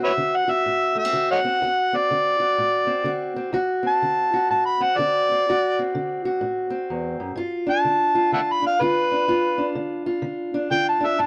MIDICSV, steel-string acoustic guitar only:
0, 0, Header, 1, 2, 480
1, 0, Start_track
1, 0, Tempo, 478469
1, 1624, Time_signature, 4, 2, 24, 8
1, 11302, End_track
2, 0, Start_track
2, 0, Title_t, "Steel-string acoustic guitar"
2, 0, Program_c, 0, 25
2, 0, Note_on_c, 0, 38, 76
2, 0, Note_on_c, 0, 60, 57
2, 0, Note_on_c, 0, 66, 62
2, 141, Note_off_c, 0, 38, 0
2, 175, Note_on_c, 0, 50, 58
2, 475, Note_off_c, 0, 66, 0
2, 479, Note_on_c, 0, 66, 63
2, 623, Note_off_c, 0, 50, 0
2, 662, Note_on_c, 0, 45, 61
2, 952, Note_off_c, 0, 60, 0
2, 956, Note_on_c, 0, 57, 53
2, 1051, Note_off_c, 0, 57, 0
2, 1051, Note_on_c, 0, 60, 45
2, 1107, Note_off_c, 0, 45, 0
2, 1134, Note_on_c, 0, 50, 59
2, 1136, Note_off_c, 0, 66, 0
2, 1140, Note_on_c, 0, 66, 66
2, 1437, Note_off_c, 0, 60, 0
2, 1449, Note_on_c, 0, 60, 54
2, 1583, Note_off_c, 0, 50, 0
2, 1624, Note_on_c, 0, 38, 74
2, 1633, Note_off_c, 0, 66, 0
2, 1637, Note_on_c, 0, 66, 66
2, 1654, Note_off_c, 0, 60, 0
2, 1936, Note_on_c, 0, 60, 50
2, 2068, Note_off_c, 0, 38, 0
2, 2115, Note_on_c, 0, 50, 62
2, 2402, Note_off_c, 0, 66, 0
2, 2406, Note_on_c, 0, 66, 59
2, 2554, Note_off_c, 0, 50, 0
2, 2591, Note_on_c, 0, 45, 69
2, 2873, Note_off_c, 0, 60, 0
2, 2877, Note_on_c, 0, 60, 54
2, 3032, Note_off_c, 0, 45, 0
2, 3052, Note_on_c, 0, 50, 56
2, 3061, Note_off_c, 0, 66, 0
2, 3065, Note_on_c, 0, 66, 62
2, 3370, Note_off_c, 0, 60, 0
2, 3374, Note_on_c, 0, 60, 56
2, 3503, Note_off_c, 0, 50, 0
2, 3537, Note_on_c, 0, 38, 75
2, 3543, Note_off_c, 0, 66, 0
2, 3547, Note_on_c, 0, 66, 76
2, 3567, Note_off_c, 0, 60, 0
2, 3840, Note_on_c, 0, 60, 52
2, 3986, Note_off_c, 0, 38, 0
2, 4036, Note_on_c, 0, 50, 58
2, 4346, Note_off_c, 0, 66, 0
2, 4350, Note_on_c, 0, 66, 65
2, 4475, Note_off_c, 0, 50, 0
2, 4520, Note_on_c, 0, 45, 67
2, 4803, Note_off_c, 0, 60, 0
2, 4820, Note_on_c, 0, 60, 54
2, 4957, Note_off_c, 0, 45, 0
2, 4998, Note_off_c, 0, 66, 0
2, 5003, Note_on_c, 0, 50, 56
2, 5015, Note_on_c, 0, 66, 65
2, 5293, Note_off_c, 0, 60, 0
2, 5331, Note_on_c, 0, 60, 58
2, 5439, Note_off_c, 0, 50, 0
2, 5459, Note_off_c, 0, 66, 0
2, 5467, Note_off_c, 0, 60, 0
2, 5508, Note_on_c, 0, 38, 78
2, 5515, Note_on_c, 0, 66, 76
2, 5808, Note_on_c, 0, 60, 55
2, 5931, Note_off_c, 0, 38, 0
2, 5967, Note_on_c, 0, 50, 58
2, 6261, Note_off_c, 0, 66, 0
2, 6273, Note_on_c, 0, 66, 61
2, 6401, Note_off_c, 0, 50, 0
2, 6430, Note_on_c, 0, 45, 69
2, 6713, Note_off_c, 0, 60, 0
2, 6725, Note_on_c, 0, 60, 54
2, 6872, Note_off_c, 0, 45, 0
2, 6923, Note_on_c, 0, 40, 56
2, 7214, Note_off_c, 0, 40, 0
2, 7222, Note_on_c, 0, 42, 57
2, 7364, Note_off_c, 0, 60, 0
2, 7375, Note_off_c, 0, 42, 0
2, 7378, Note_off_c, 0, 66, 0
2, 7379, Note_on_c, 0, 43, 74
2, 7397, Note_on_c, 0, 65, 71
2, 7690, Note_on_c, 0, 62, 57
2, 7826, Note_off_c, 0, 43, 0
2, 7871, Note_on_c, 0, 50, 59
2, 8171, Note_off_c, 0, 65, 0
2, 8175, Note_on_c, 0, 65, 61
2, 8312, Note_off_c, 0, 50, 0
2, 8349, Note_on_c, 0, 50, 61
2, 8647, Note_off_c, 0, 62, 0
2, 8651, Note_on_c, 0, 62, 57
2, 8791, Note_off_c, 0, 50, 0
2, 8837, Note_on_c, 0, 50, 63
2, 8845, Note_off_c, 0, 65, 0
2, 8849, Note_on_c, 0, 65, 65
2, 9141, Note_off_c, 0, 62, 0
2, 9145, Note_on_c, 0, 62, 50
2, 9275, Note_off_c, 0, 50, 0
2, 9310, Note_on_c, 0, 43, 75
2, 9314, Note_off_c, 0, 65, 0
2, 9318, Note_on_c, 0, 65, 69
2, 9605, Note_off_c, 0, 62, 0
2, 9609, Note_on_c, 0, 62, 60
2, 9751, Note_off_c, 0, 43, 0
2, 9785, Note_on_c, 0, 50, 62
2, 10091, Note_off_c, 0, 65, 0
2, 10095, Note_on_c, 0, 65, 61
2, 10228, Note_off_c, 0, 50, 0
2, 10253, Note_on_c, 0, 50, 67
2, 10571, Note_off_c, 0, 62, 0
2, 10575, Note_on_c, 0, 62, 61
2, 10702, Note_off_c, 0, 50, 0
2, 10736, Note_off_c, 0, 65, 0
2, 10741, Note_on_c, 0, 50, 58
2, 10748, Note_on_c, 0, 65, 65
2, 11036, Note_off_c, 0, 62, 0
2, 11040, Note_on_c, 0, 62, 59
2, 11185, Note_off_c, 0, 50, 0
2, 11203, Note_off_c, 0, 65, 0
2, 11226, Note_on_c, 0, 43, 70
2, 11231, Note_on_c, 0, 65, 65
2, 11302, Note_off_c, 0, 43, 0
2, 11302, Note_off_c, 0, 62, 0
2, 11302, Note_off_c, 0, 65, 0
2, 11302, End_track
0, 0, End_of_file